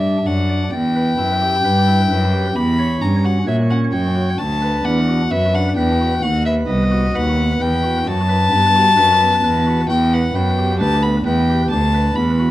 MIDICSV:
0, 0, Header, 1, 4, 480
1, 0, Start_track
1, 0, Key_signature, 2, "minor"
1, 0, Tempo, 918836
1, 1340, Time_signature, 4, 2, 24, 8
1, 4219, Tempo, 910470
1, 6556, End_track
2, 0, Start_track
2, 0, Title_t, "Violin"
2, 0, Program_c, 0, 40
2, 0, Note_on_c, 0, 76, 84
2, 135, Note_on_c, 0, 78, 77
2, 143, Note_off_c, 0, 76, 0
2, 369, Note_on_c, 0, 79, 104
2, 377, Note_off_c, 0, 78, 0
2, 1335, Note_on_c, 0, 83, 100
2, 1343, Note_off_c, 0, 79, 0
2, 1574, Note_on_c, 0, 82, 79
2, 1582, Note_off_c, 0, 83, 0
2, 1698, Note_on_c, 0, 78, 74
2, 1706, Note_off_c, 0, 82, 0
2, 1813, Note_off_c, 0, 78, 0
2, 1816, Note_on_c, 0, 76, 85
2, 1858, Note_off_c, 0, 76, 0
2, 1934, Note_on_c, 0, 78, 74
2, 1976, Note_off_c, 0, 78, 0
2, 2049, Note_on_c, 0, 79, 84
2, 2288, Note_on_c, 0, 81, 89
2, 2296, Note_off_c, 0, 79, 0
2, 2534, Note_on_c, 0, 78, 84
2, 2542, Note_off_c, 0, 81, 0
2, 2772, Note_on_c, 0, 76, 97
2, 2780, Note_off_c, 0, 78, 0
2, 2897, Note_on_c, 0, 78, 86
2, 2905, Note_off_c, 0, 76, 0
2, 3010, Note_off_c, 0, 78, 0
2, 3014, Note_on_c, 0, 79, 91
2, 3251, Note_on_c, 0, 78, 104
2, 3259, Note_off_c, 0, 79, 0
2, 3370, Note_off_c, 0, 78, 0
2, 3373, Note_on_c, 0, 76, 87
2, 3415, Note_off_c, 0, 76, 0
2, 3486, Note_on_c, 0, 75, 90
2, 3740, Note_on_c, 0, 78, 93
2, 3748, Note_off_c, 0, 75, 0
2, 3977, Note_on_c, 0, 79, 93
2, 3985, Note_off_c, 0, 78, 0
2, 4217, Note_on_c, 0, 81, 121
2, 4225, Note_off_c, 0, 79, 0
2, 5171, Note_off_c, 0, 81, 0
2, 5175, Note_on_c, 0, 79, 98
2, 5301, Note_on_c, 0, 78, 85
2, 5309, Note_off_c, 0, 79, 0
2, 5418, Note_on_c, 0, 79, 89
2, 5426, Note_off_c, 0, 78, 0
2, 5649, Note_off_c, 0, 79, 0
2, 5652, Note_on_c, 0, 81, 104
2, 5774, Note_on_c, 0, 83, 91
2, 5782, Note_off_c, 0, 81, 0
2, 5895, Note_off_c, 0, 83, 0
2, 5899, Note_on_c, 0, 79, 88
2, 6129, Note_off_c, 0, 79, 0
2, 6132, Note_on_c, 0, 81, 96
2, 6366, Note_on_c, 0, 83, 82
2, 6374, Note_off_c, 0, 81, 0
2, 6556, Note_off_c, 0, 83, 0
2, 6556, End_track
3, 0, Start_track
3, 0, Title_t, "Pipe organ"
3, 0, Program_c, 1, 19
3, 0, Note_on_c, 1, 43, 46
3, 0, Note_on_c, 1, 62, 45
3, 91, Note_off_c, 1, 62, 0
3, 117, Note_off_c, 1, 43, 0
3, 138, Note_on_c, 1, 42, 51
3, 138, Note_on_c, 1, 62, 44
3, 258, Note_on_c, 1, 74, 42
3, 331, Note_off_c, 1, 62, 0
3, 358, Note_off_c, 1, 42, 0
3, 379, Note_off_c, 1, 74, 0
3, 382, Note_on_c, 1, 40, 49
3, 499, Note_on_c, 1, 71, 49
3, 601, Note_off_c, 1, 40, 0
3, 616, Note_on_c, 1, 42, 56
3, 616, Note_on_c, 1, 64, 46
3, 692, Note_off_c, 1, 71, 0
3, 738, Note_on_c, 1, 67, 45
3, 811, Note_off_c, 1, 64, 0
3, 838, Note_off_c, 1, 42, 0
3, 858, Note_on_c, 1, 43, 60
3, 858, Note_on_c, 1, 71, 48
3, 932, Note_off_c, 1, 67, 0
3, 978, Note_on_c, 1, 64, 44
3, 1052, Note_off_c, 1, 71, 0
3, 1079, Note_off_c, 1, 43, 0
3, 1096, Note_on_c, 1, 71, 45
3, 1097, Note_on_c, 1, 42, 51
3, 1171, Note_off_c, 1, 64, 0
3, 1217, Note_on_c, 1, 67, 51
3, 1290, Note_off_c, 1, 71, 0
3, 1317, Note_off_c, 1, 42, 0
3, 1330, Note_on_c, 1, 40, 55
3, 1339, Note_off_c, 1, 67, 0
3, 1455, Note_on_c, 1, 73, 48
3, 1554, Note_off_c, 1, 40, 0
3, 1575, Note_on_c, 1, 43, 56
3, 1575, Note_on_c, 1, 61, 47
3, 1649, Note_off_c, 1, 73, 0
3, 1693, Note_on_c, 1, 66, 49
3, 1769, Note_off_c, 1, 61, 0
3, 1796, Note_off_c, 1, 43, 0
3, 1811, Note_on_c, 1, 46, 53
3, 1812, Note_on_c, 1, 73, 46
3, 1888, Note_off_c, 1, 66, 0
3, 1933, Note_on_c, 1, 61, 50
3, 2006, Note_off_c, 1, 73, 0
3, 2033, Note_off_c, 1, 46, 0
3, 2049, Note_on_c, 1, 73, 48
3, 2051, Note_on_c, 1, 42, 55
3, 2126, Note_off_c, 1, 61, 0
3, 2169, Note_on_c, 1, 66, 47
3, 2244, Note_off_c, 1, 73, 0
3, 2272, Note_off_c, 1, 42, 0
3, 2292, Note_off_c, 1, 66, 0
3, 2292, Note_on_c, 1, 38, 54
3, 2414, Note_on_c, 1, 71, 51
3, 2513, Note_off_c, 1, 38, 0
3, 2530, Note_on_c, 1, 40, 57
3, 2530, Note_on_c, 1, 62, 50
3, 2607, Note_off_c, 1, 71, 0
3, 2654, Note_on_c, 1, 66, 46
3, 2726, Note_off_c, 1, 62, 0
3, 2753, Note_off_c, 1, 40, 0
3, 2772, Note_on_c, 1, 42, 54
3, 2774, Note_on_c, 1, 71, 51
3, 2848, Note_off_c, 1, 66, 0
3, 2893, Note_on_c, 1, 62, 49
3, 2968, Note_off_c, 1, 71, 0
3, 2994, Note_off_c, 1, 42, 0
3, 3014, Note_on_c, 1, 71, 48
3, 3015, Note_on_c, 1, 40, 54
3, 3087, Note_off_c, 1, 62, 0
3, 3137, Note_on_c, 1, 66, 54
3, 3208, Note_off_c, 1, 71, 0
3, 3235, Note_off_c, 1, 40, 0
3, 3256, Note_on_c, 1, 39, 55
3, 3257, Note_off_c, 1, 66, 0
3, 3373, Note_on_c, 1, 71, 50
3, 3475, Note_off_c, 1, 39, 0
3, 3494, Note_on_c, 1, 59, 49
3, 3496, Note_on_c, 1, 36, 58
3, 3567, Note_off_c, 1, 71, 0
3, 3609, Note_on_c, 1, 66, 57
3, 3688, Note_off_c, 1, 59, 0
3, 3716, Note_off_c, 1, 36, 0
3, 3732, Note_on_c, 1, 39, 56
3, 3733, Note_on_c, 1, 71, 51
3, 3806, Note_off_c, 1, 66, 0
3, 3851, Note_on_c, 1, 59, 51
3, 3928, Note_off_c, 1, 71, 0
3, 3954, Note_off_c, 1, 39, 0
3, 3971, Note_on_c, 1, 71, 48
3, 3972, Note_on_c, 1, 40, 58
3, 4046, Note_off_c, 1, 59, 0
3, 4089, Note_on_c, 1, 66, 50
3, 4165, Note_off_c, 1, 71, 0
3, 4193, Note_off_c, 1, 40, 0
3, 4208, Note_on_c, 1, 42, 61
3, 4285, Note_off_c, 1, 66, 0
3, 4329, Note_on_c, 1, 71, 54
3, 4432, Note_off_c, 1, 42, 0
3, 4449, Note_on_c, 1, 59, 50
3, 4451, Note_on_c, 1, 43, 63
3, 4526, Note_off_c, 1, 71, 0
3, 4575, Note_on_c, 1, 66, 52
3, 4646, Note_off_c, 1, 59, 0
3, 4674, Note_off_c, 1, 43, 0
3, 4690, Note_on_c, 1, 42, 63
3, 4691, Note_on_c, 1, 71, 55
3, 4770, Note_off_c, 1, 66, 0
3, 4818, Note_on_c, 1, 59, 49
3, 4887, Note_off_c, 1, 71, 0
3, 4914, Note_off_c, 1, 42, 0
3, 4937, Note_on_c, 1, 71, 50
3, 4939, Note_on_c, 1, 40, 58
3, 5011, Note_off_c, 1, 59, 0
3, 5058, Note_on_c, 1, 66, 55
3, 5131, Note_off_c, 1, 71, 0
3, 5158, Note_off_c, 1, 40, 0
3, 5175, Note_on_c, 1, 40, 66
3, 5179, Note_off_c, 1, 66, 0
3, 5302, Note_on_c, 1, 71, 50
3, 5396, Note_off_c, 1, 40, 0
3, 5421, Note_on_c, 1, 42, 64
3, 5421, Note_on_c, 1, 59, 53
3, 5493, Note_off_c, 1, 71, 0
3, 5542, Note_on_c, 1, 67, 54
3, 5611, Note_off_c, 1, 59, 0
3, 5638, Note_off_c, 1, 42, 0
3, 5658, Note_on_c, 1, 71, 54
3, 5659, Note_on_c, 1, 38, 60
3, 5732, Note_off_c, 1, 67, 0
3, 5780, Note_on_c, 1, 59, 54
3, 5849, Note_off_c, 1, 71, 0
3, 5876, Note_off_c, 1, 38, 0
3, 5898, Note_on_c, 1, 40, 57
3, 5898, Note_on_c, 1, 71, 51
3, 5970, Note_off_c, 1, 59, 0
3, 6021, Note_on_c, 1, 67, 54
3, 6089, Note_off_c, 1, 71, 0
3, 6115, Note_off_c, 1, 40, 0
3, 6138, Note_off_c, 1, 67, 0
3, 6139, Note_on_c, 1, 38, 55
3, 6257, Note_on_c, 1, 71, 53
3, 6355, Note_off_c, 1, 38, 0
3, 6378, Note_on_c, 1, 59, 51
3, 6379, Note_on_c, 1, 40, 59
3, 6448, Note_off_c, 1, 71, 0
3, 6495, Note_on_c, 1, 66, 55
3, 6556, Note_off_c, 1, 40, 0
3, 6556, Note_off_c, 1, 59, 0
3, 6556, Note_off_c, 1, 66, 0
3, 6556, End_track
4, 0, Start_track
4, 0, Title_t, "Cello"
4, 0, Program_c, 2, 42
4, 0, Note_on_c, 2, 43, 64
4, 136, Note_off_c, 2, 43, 0
4, 139, Note_on_c, 2, 42, 63
4, 375, Note_off_c, 2, 42, 0
4, 380, Note_on_c, 2, 40, 69
4, 616, Note_off_c, 2, 40, 0
4, 621, Note_on_c, 2, 42, 64
4, 857, Note_off_c, 2, 42, 0
4, 860, Note_on_c, 2, 43, 69
4, 1096, Note_off_c, 2, 43, 0
4, 1103, Note_on_c, 2, 42, 66
4, 1337, Note_off_c, 2, 42, 0
4, 1342, Note_on_c, 2, 40, 74
4, 1576, Note_off_c, 2, 40, 0
4, 1581, Note_on_c, 2, 43, 64
4, 1815, Note_off_c, 2, 43, 0
4, 1819, Note_on_c, 2, 46, 66
4, 2053, Note_off_c, 2, 46, 0
4, 2060, Note_on_c, 2, 42, 64
4, 2292, Note_off_c, 2, 42, 0
4, 2297, Note_on_c, 2, 38, 66
4, 2531, Note_off_c, 2, 38, 0
4, 2536, Note_on_c, 2, 40, 67
4, 2772, Note_off_c, 2, 40, 0
4, 2778, Note_on_c, 2, 42, 68
4, 3013, Note_off_c, 2, 42, 0
4, 3017, Note_on_c, 2, 40, 74
4, 3252, Note_off_c, 2, 40, 0
4, 3260, Note_on_c, 2, 39, 73
4, 3493, Note_off_c, 2, 39, 0
4, 3497, Note_on_c, 2, 36, 67
4, 3732, Note_off_c, 2, 36, 0
4, 3736, Note_on_c, 2, 39, 76
4, 3972, Note_off_c, 2, 39, 0
4, 3976, Note_on_c, 2, 40, 68
4, 4215, Note_on_c, 2, 42, 76
4, 4223, Note_off_c, 2, 40, 0
4, 4455, Note_off_c, 2, 42, 0
4, 4458, Note_on_c, 2, 43, 72
4, 4694, Note_off_c, 2, 43, 0
4, 4697, Note_on_c, 2, 42, 72
4, 4934, Note_off_c, 2, 42, 0
4, 4940, Note_on_c, 2, 40, 78
4, 5175, Note_off_c, 2, 40, 0
4, 5181, Note_on_c, 2, 40, 85
4, 5403, Note_off_c, 2, 40, 0
4, 5417, Note_on_c, 2, 42, 72
4, 5660, Note_on_c, 2, 38, 76
4, 5667, Note_off_c, 2, 42, 0
4, 5891, Note_off_c, 2, 38, 0
4, 5894, Note_on_c, 2, 40, 73
4, 6129, Note_off_c, 2, 40, 0
4, 6133, Note_on_c, 2, 38, 76
4, 6369, Note_off_c, 2, 38, 0
4, 6372, Note_on_c, 2, 40, 76
4, 6556, Note_off_c, 2, 40, 0
4, 6556, End_track
0, 0, End_of_file